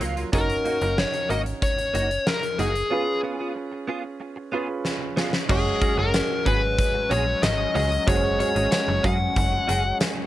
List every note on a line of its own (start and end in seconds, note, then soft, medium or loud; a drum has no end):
0.00 0.25 C#2 medium
0.00 0.15 F#3 medium
0.00 0.16 A#3 medium
0.00 0.29 D#4 medium
0.00 0.15 F4 medium
0.00 0.29 F#4 medium
0.00 0.30 A#4 medium
0.00 0.29 F5 medium
0.00 closed hi-hat medium
0.16 0.29 F#3 soft
0.16 0.29 A#3 medium
0.16 0.28 F4 medium
0.16 closed hi-hat soft
0.32 0.57 F#1 medium
0.32 0.47 A#3 medium
0.32 2.87 C#4 medium
0.32 2.87 D#4 medium
0.32 0.48 D#4 medium
0.32 2.88 F#4 medium
0.32 0.48 F#4 medium
0.32 1.00 A#4 medium
0.32 2.88 A#4 medium
0.32 kick loud
0.32 closed hi-hat medium
0.49 muted clean electric guitar stroke soft
0.49 closed hi-hat medium
0.65 0.77 A#3 medium
0.65 0.77 D#4 medium
0.65 0.77 F#4 medium
0.65 closed hi-hat medium
0.81 1.06 F#1 loud
0.81 0.93 A#3 medium
0.81 0.93 D#4 medium
0.81 0.93 F#4 medium
0.81 closed hi-hat soft
0.98 1.30 C#5 loud
0.98 muted clean electric guitar stroke medium
0.98 snare loud
1.13 muted clean electric guitar stroke soft
1.13 closed hi-hat medium
1.29 1.54 G#1 medium
1.29 1.44 A#3 medium
1.29 1.45 D#4 medium
1.29 1.44 F#4 medium
1.29 1.39 D#5 loud
1.29 closed hi-hat medium
1.45 muted clean electric guitar stroke soft
1.45 closed hi-hat soft
1.62 2.29 C#5 loud
1.62 muted clean electric guitar stroke soft
1.62 kick medium
1.62 closed hi-hat medium
1.78 muted clean electric guitar stroke soft
1.78 closed hi-hat medium
1.94 2.19 F#1 medium
1.94 2.09 A#3 medium
1.94 2.09 D#4 medium
1.94 2.09 F#4 medium
1.94 closed hi-hat medium
2.10 muted clean electric guitar stroke soft
2.10 closed hi-hat soft
2.26 2.59 A#4 medium
2.26 muted clean electric guitar stroke soft
2.26 snare loud
2.42 muted clean electric guitar stroke soft
2.42 closed hi-hat soft
2.58 2.83 F#1 medium
2.58 2.73 A#3 medium
2.58 2.74 D#4 medium
2.58 2.74 F#4 medium
2.58 3.20 G#4 medium
2.58 closed hi-hat medium
2.75 muted clean electric guitar stroke soft
2.75 closed hi-hat soft
2.90 3.06 B3 medium
2.90 4.49 C#4 medium
2.90 4.49 F4 medium
2.90 3.06 F4 medium
2.90 4.50 G#4 medium
2.90 3.06 G#4 medium
2.90 4.50 B4 medium
3.07 muted clean electric guitar stroke soft
3.23 3.35 B3 medium
3.23 3.35 F4 medium
3.23 3.36 G#4 medium
3.39 3.52 B3 medium
3.39 3.51 F4 medium
3.39 3.51 G#4 medium
3.55 muted clean electric guitar stroke soft
3.72 muted clean electric guitar stroke soft
3.88 4.02 B3 medium
3.88 4.03 F4 medium
3.88 4.03 G#4 loud
4.04 muted clean electric guitar stroke soft
4.20 muted clean electric guitar stroke soft
4.36 muted clean electric guitar stroke soft
4.52 4.67 B3 medium
4.52 5.48 C#4 medium
4.52 5.49 F4 soft
4.52 4.67 F4 medium
4.52 5.49 G#4 medium
4.52 4.67 G#4 medium
4.52 5.50 B4 medium
4.68 muted clean electric guitar stroke soft
4.85 muted clean electric guitar stroke soft
4.85 snare medium
5.01 muted clean electric guitar stroke soft
5.16 5.31 B3 medium
5.16 5.32 F4 medium
5.16 5.32 G#4 medium
5.16 snare medium
5.33 muted clean electric guitar stroke soft
5.33 snare medium
5.49 5.74 F#1 loud
5.49 10.27 F#3 medium
5.49 8.03 G#3 medium
5.49 10.27 G#3 medium
5.49 5.64 C#4 medium
5.49 8.03 C#4 medium
5.49 10.27 C#4 medium
5.49 5.64 F#4 medium
5.49 8.04 F#4 medium
5.49 5.64 G#4 medium
5.49 5.98 G#4 medium
5.49 8.04 G#4 medium
5.49 8.04 C#5 medium
5.49 kick loud
5.49 crash loud
5.65 muted clean electric guitar stroke medium
5.81 5.93 C#4 medium
5.81 5.93 F#4 medium
5.81 5.94 G#4 medium
5.81 kick medium
5.81 closed hi-hat medium
5.97 6.22 F#1 loud
5.97 6.10 C#4 medium
5.97 6.09 F#4 medium
5.97 6.09 G#4 medium
5.97 6.46 A#4 medium
6.14 snare loud
6.14 closed hi-hat medium
6.14 tambourine medium
6.30 muted clean electric guitar stroke soft
6.45 6.82 G#1 medium
6.45 6.60 C#4 medium
6.45 6.61 F#4 medium
6.45 6.61 G#4 loud
6.45 7.13 B4 medium
6.45 kick medium
6.45 closed hi-hat medium
6.62 muted clean electric guitar stroke soft
6.78 muted clean electric guitar stroke soft
6.78 kick loud
6.78 closed hi-hat medium
6.94 muted clean electric guitar stroke medium
7.10 7.35 A#1 loud
7.10 7.25 C#4 medium
7.10 7.25 F#4 medium
7.10 7.25 G#4 loud
7.10 7.43 C#5 loud
7.10 closed hi-hat medium
7.26 muted clean electric guitar stroke soft
7.42 7.67 G#1 medium
7.42 7.75 D#5 loud
7.42 muted clean electric guitar stroke soft
7.42 snare loud
7.42 closed hi-hat medium
7.42 tambourine medium
7.59 muted clean electric guitar stroke soft
7.74 7.99 C#2 loud
7.74 7.89 C#4 medium
7.74 7.90 F#4 medium
7.74 7.89 G#4 medium
7.74 8.08 D#5 loud
7.74 open hi-hat medium
7.91 muted clean electric guitar stroke soft
7.91 closed hi-hat soft
8.07 8.44 F#1 loud
8.07 10.27 G#3 medium
8.07 8.22 C#4 medium
8.07 10.27 C#4 medium
8.07 8.22 F#4 medium
8.07 10.27 F#4 medium
8.07 8.22 G#4 medium
8.07 10.27 G#4 medium
8.07 8.15 C5 medium
8.07 8.39 C#5 loud
8.07 kick loud
8.07 closed hi-hat loud
8.16 10.27 C#5 medium
8.23 muted clean electric guitar stroke soft
8.39 8.51 C#4 medium
8.39 8.51 F#4 medium
8.39 8.51 G#4 medium
8.39 8.71 C#5 medium
8.39 closed hi-hat medium
8.55 8.68 G#1 medium
8.55 8.68 C#4 medium
8.55 8.67 F#4 medium
8.55 8.67 G#4 medium
8.55 closed hi-hat medium
8.71 9.05 C#5 loud
8.71 muted clean electric guitar stroke soft
8.71 snare loud
8.71 closed hi-hat medium
8.71 tambourine medium
8.87 9.00 F#1 loud
8.87 muted clean electric guitar stroke medium
9.03 9.28 F#2 loud
9.03 9.18 C#4 medium
9.03 9.19 F#4 medium
9.03 9.18 G#4 loud
9.03 9.97 F#5 loud
9.03 kick medium
9.03 closed hi-hat medium
9.19 muted clean electric guitar stroke soft
9.36 9.61 F#1 loud
9.36 muted clean electric guitar stroke soft
9.36 kick medium
9.36 closed hi-hat medium
9.52 muted clean electric guitar stroke medium
9.67 9.93 F#1 loud
9.67 9.83 C#4 medium
9.67 9.83 F#4 medium
9.67 9.83 G#4 loud
9.67 closed hi-hat medium
9.84 muted clean electric guitar stroke soft
10.00 muted clean electric guitar stroke soft
10.00 snare loud
10.00 closed hi-hat medium
10.00 tambourine medium
10.16 muted clean electric guitar stroke soft